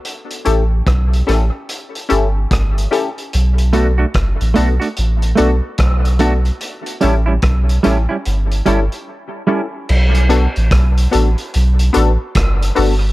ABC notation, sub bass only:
X:1
M:4/4
L:1/16
Q:"Swing 16ths" 1/4=73
K:Bm
V:1 name="Sub bass" clef=bass
z2 A,,,2 B,,,2 A,,, z3 G,,,2 G,,,2 z2 | B,,,4 F,,, A,,, B,,, z A,,,2 B,,, z B,,,4 | z2 A,,,2 B,,,2 A,,, z G,,,2 G,,, z4 z | B,,,3 A,,, B,,,2 A,,, z B,,,2 A,,, z F,,,2 G,,,2 |]